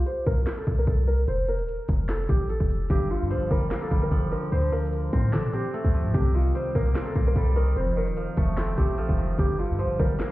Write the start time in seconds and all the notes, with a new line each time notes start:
0.06 C5, closed hi-hat
0.26 C2 A#4, kick, open hi-hat
0.47 snare, clap, closed hi-hat
0.57 A4
0.67 C2, kick, closed hi-hat
0.78 A#4
0.87 C2 A4, kick, closed hi-hat
1.07 A#4, open hi-hat
1.28 F1 C5, closed hi-hat
1.48 A#4, closed hi-hat
1.59 D#1, closed hi-hat
1.69 closed hi-hat
1.88 F1, kick, closed hi-hat
2.09 A4, snare, clap, closed hi-hat
2.29 A1 G4, kick, closed hi-hat
2.49 A4, closed hi-hat
2.60 F1, kick
2.70 closed hi-hat
2.90 G1 G2 G4, kick, closed hi-hat
3.10 D3 F4, closed hi-hat
3.17 G2, closed hi-hat
3.24 closed hi-hat
3.30 F3 C5, closed hi-hat
3.36 G1
3.51 G1 G3 A#4, kick, open hi-hat
3.71 A#3, snare, clap, closed hi-hat
3.82 A4
3.91 G1 G3, kick, closed hi-hat
4.03 A#4
4.11 G1 F3 A4, kick, closed hi-hat
4.32 D3 A#4, open hi-hat
4.52 D2 D3 C5, closed hi-hat
4.72 F3 A#4, closed hi-hat
4.79 closed hi-hat
4.86 closed hi-hat
4.93 closed hi-hat
5.13 A2 C4, kick, closed hi-hat
5.33 F3 D4 A4, snare, clap, closed hi-hat
5.44 A2
5.53 C4 G4, closed hi-hat
5.74 A3 A4, closed hi-hat
5.85 D2, kick
5.94 F3, open hi-hat
6.05 A2
6.14 C2 C3 G4, kick, closed hi-hat
6.35 D#3 F4, closed hi-hat
6.41 closed hi-hat
6.48 closed hi-hat
6.55 G3 C5, closed hi-hat
6.75 C2 A#3 A#4, kick, open hi-hat
6.95 C4, snare, clap, closed hi-hat
7.06 A4
7.15 C2 A#3, kick, closed hi-hat
7.27 A#4
7.36 C2 G3 A4, kick, closed hi-hat
7.56 D#3 A#4, open hi-hat
7.76 F1 F2 C5, closed hi-hat
7.97 D#3 A#4, closed hi-hat
8.07 D#1, closed hi-hat
8.17 F3, closed hi-hat
8.37 F1 A3, kick, closed hi-hat
8.57 C4 A4, snare, clap, closed hi-hat
8.77 A1 A3 G4, kick, closed hi-hat
8.98 F3 A4, closed hi-hat
9.09 F1, kick
9.18 D#3, closed hi-hat
9.39 G1 G2 G4, kick, closed hi-hat
9.59 D3 F4, closed hi-hat
9.66 G2, closed hi-hat
9.72 closed hi-hat
9.79 F3 C5, closed hi-hat
9.85 G1
9.99 G1 G3 A#4, kick, open hi-hat
10.20 A#3, snare, clap, closed hi-hat